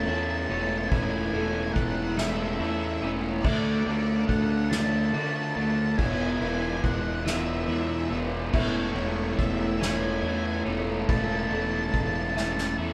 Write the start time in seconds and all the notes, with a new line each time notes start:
Already playing: E2 E3 A3 B3 C#4 E4 A4 C#5
0.01 A5
0.07 E2 A2 E3 A3 C#4 E4 C#5 A5, ride
0.16 A5
0.23 A5
0.31 A5
0.38 A5
0.47 E1 A2 E3 A3 C#4 E4 A5, ride
0.53 A5
0.62 A5
0.69 A5
0.78 A5
0.84 A5
0.89 E1 E2 A2 E3 A3 C#4 E4 B4 G#5, kick, ride
0.97 G#5
1.04 G#5
1.11 G#5
1.18 G#5
1.26 G#5
1.33 E1 A2 E3 A3 C#4 E4 A4 G#5, ride
1.41 G#5
1.48 G#5
1.55 G#5
1.63 G#5
1.73 E1 A3 F#5, kick, ride
1.80 F#5
1.88 F#5
1.95 F#5
2.03 F#5
2.11 F#5
2.16 A2 E3 A3 C#4 E4 E5, snare, ride
2.24 E5
2.32 E5
2.40 E5
2.47 E5
2.55 E3 E5
2.60 E2 A2 A3 C#4 E4 E5, ride
2.68 E5
2.79 E5
2.86 E5
2.93 E5
3.01 E1 A2 E3 A3 C#4 E4 C#5 E5, ride
3.42 D2 D3 A3 D4 F#4 D5 E5, kick, crash
3.48 D5
3.57 D5
3.65 D5
3.71 D5
3.79 D5
3.86 D2 D3 A3 D4 F#4 D5, ride
3.95 D5
4.02 D5
4.08 D5
4.16 D5
4.28 D2 A3 F#5, kick, ride
4.36 F#5
4.43 F#5
4.50 F#5
4.57 F#5
4.64 F#5
4.70 D3 A3 D4 F#4 A5, snare, ride
4.77 A5
4.85 A5
4.91 A5
4.99 A5
5.06 A5
5.13 D3 A3 D4 F#4 D5 A5, ride
5.21 A5
5.29 A5
5.36 A5
5.44 A5
5.55 D2 D3 A3 D4 F#4 A5, ride
5.62 A5
5.70 A5
5.79 A5
5.87 A5
5.97 E1 E2 B2 E3 G#3 B3 E4 G#4 C#5 G#5, kick, ride
6.05 G#5
6.14 G#5
6.21 G#5
6.29 G#5
6.38 E1 E2 E3 G#3 B3 E4 B4 G#5, ride
6.42 B2 G#5
6.54 G#5
6.62 G#5
6.69 G#5
6.77 G#5
6.84 E1 G#3 F#5, kick, ride
6.91 F#5
6.99 F#5
7.08 F#5
7.15 F#5
7.25 E2 B2 E3 G#3 B3 E4 E5, snare, ride
7.33 E5
7.41 E5
7.50 E5
7.56 E5
7.64 E2 E3 E5
7.68 E2 B2 G#3 B3 E4 E5, ride
7.79 E5
7.87 E5
7.95 E5
8.01 E5
8.09 E1 E2 B2 E3 G#3 B3 E4 C#5 E5, ride
8.51 E1 E2 A2 E3 A3 B3 C#4 E4 B4 C#5 E5, kick, crash
8.60 C#5
8.69 C#5
8.78 C#5
8.84 C#5
8.93 E1 A2 E3 A3 C#4 C#5
8.97 E4 C#5, ride
9.08 C#5
9.16 C#5
9.24 C#5
9.33 A3 C#5
9.39 E1 E5, kick, ride
9.45 E5
9.53 E5
9.60 E5
9.67 E5
9.74 E5
9.81 A2 E3 A3 C#4 E4 G#5, snare, ride
9.89 G#5
9.97 G#5
10.04 G#5
10.13 G#5
10.22 E2 A2 E3 A3 C#4 E4 C#5 G#5, ride
10.29 G#5
10.37 G#5
10.45 G#5
10.53 G#5
10.66 E1 A2 E3 A3 C#4 E4, ride
11.07 E1 E2 A2 E3 A3 C#4 E4 A4 B4 A5, kick, ride
11.17 A5
11.24 A5
11.32 A5
11.40 A5
11.48 E1 A2 E3 A3 C#4 E4 A4 A5
11.52 A5, ride
11.62 A5
11.71 A5
11.78 A5
11.85 A5
11.93 E1 A3 A5, kick, ride
12.01 A5
12.07 A5
12.16 A5
12.22 A5
12.30 A5
12.35 A2 E3 A3 C#4 E4 E5 A5, snare
12.46 A5
12.52 A5
12.58 A5, snare
12.67 A5
12.78 E2 A2 E3 A3 C#4 E4